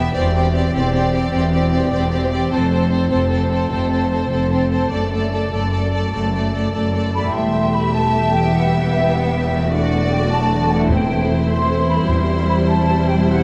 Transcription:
Already playing: harp E2 B2 B3 B4 E5 G5, viola section B3, violin section G4 E5
0.14 double bass section E1, cello section E2, harp E2, viola section C4, violin section G4 D5
0.36 viola section C4, harp C4, violin section G4 D5
0.54 viola section C4, violin section G4 D5, harp D5
0.73 double bass section E1, cello section E2, viola section C4, violin section G4 D5, harp C5
0.92 viola section C4, violin section G4 D5, harp G5
1.12 viola section C4, violin section G4 D5, harp C5
1.32 double bass section E1, cello section E2, harp E2, viola section C4, violin section G4 D5
1.52 viola section C4, harp C4, violin section G4 D5
1.73 viola section C4, violin section G4 D5, harp D5
1.92 double bass section E1, cello section E2, viola section C4, violin section G4 D5, harp C5
2.10 viola section C4, violin section G4 D5, harp G5
2.31 viola section C4, violin section G4 D5, harp C5
2.51 double bass section F1, harp F2, cello section F2, viola section C4, violin section A4 C5
2.71 harp C4, viola section C4, violin section A4 C5
2.90 viola section C4, violin section A4 C5, harp C5
3.10 double bass section F1, cello section F2, viola section C4, violin section A4 C5, harp A4
3.29 viola section C4, violin section A4 C5, harp A5
3.50 viola section C4, violin section A4 C5, harp C5
3.70 double bass section F1, cello section F2, harp C3, viola section C4, violin section A4 C5
3.90 harp C4, viola section C4, violin section A4 C5
4.10 viola section C4, violin section A4 C5, harp C5
4.30 double bass section F1, cello section F2, viola section C4, harp A4, violin section A4 C5
4.51 viola section C4, violin section A4 C5, harp A5
4.71 viola section C4, violin section A4 C5, harp C5
4.92 double bass section F#1, cello section F#2, harp F#2, viola section A3, violin section A4 D5
5.12 viola section A3, harp A3, violin section A4 D5
5.32 viola section A3, violin section A4 D5, harp D5
5.51 double bass section F#1, cello section F#2, viola section A3, violin section A4 D5, harp A4
5.72 viola section A3, violin section A4 D5, harp A5
5.93 viola section A3, harp A4, violin section A4 D5
6.13 double bass section F#1, harp F#2, cello section F#2, viola section A3, violin section A4 D5
6.33 harp A3, viola section A3, violin section A4 D5
6.53 viola section A3, violin section A4 D5, harp D5
6.73 double bass section F#1, cello section F#2, viola section A3, violin section A4 D5, harp A4
6.93 viola section A3, violin section A4 D5, harp A5
7.13 viola section A3, violin section A4 D5, harp A4, flute section B5
7.18 harp E2
7.22 harp A3
7.27 harp G4
7.31 double bass section E1, cello section E2, trombone section G3 A3, viola section A3, violin section G4, harp E5, flute section C6
7.36 violin section E5
7.74 flute section B5
7.93 trombone section G3 A3, flute section A5
8.32 harp E2, flute section G5
8.39 harp B3
8.44 harp G4
8.49 harp E5, flute section F#5
8.54 trombone section G3 B3, viola section B3
8.93 flute section E5
9.14 flute section F#5
9.32 flute section E5
9.54 harp E2
9.58 harp A3
9.63 harp F#4
9.68 harp D5
9.72 trombone section F#3 D4, viola section A3, violin section F#4 D5, flute section F#5
10.11 flute section G5
10.30 trombone section F#3 D4, flute section A5
10.70 harp E2, flute section F#5
10.76 harp A3
10.81 harp E4
10.86 trombone section E3, violin section E4, harp C5, flute section G5
10.90 timpani E2, trombone section C4, violin section C5
11.49 trombone section E3 C4, flute section C6
11.89 harp E2, flute section B5
11.96 harp G3
12.00 harp E4
12.05 double bass section E1, cello section E2, timpani E2, viola section G3, trombone section G3, harp C5, flute section C6
12.10 trombone section C4
12.49 flute section B5
12.68 flute section A5
13.08 flute section G5
13.27 flute section F#5

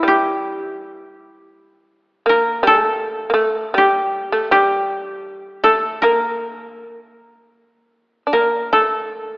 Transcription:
Already playing: koto D4 E4
0.03 shamisen G3
0.08 koto G4
2.26 shamisen A#3, koto A#4
2.63 shamisen G3
2.67 koto A4
2.82 shamisen A3
3.30 shamisen A3 A#3
3.74 shamisen G3, koto G4
4.32 shamisen A3
4.51 shamisen G3, koto G4
5.64 shamisen A3, koto A4
6.02 shamisen A#3, koto A#4
8.27 shamisen D4
8.33 shamisen A#3, koto A#4
8.73 shamisen A3, koto A4

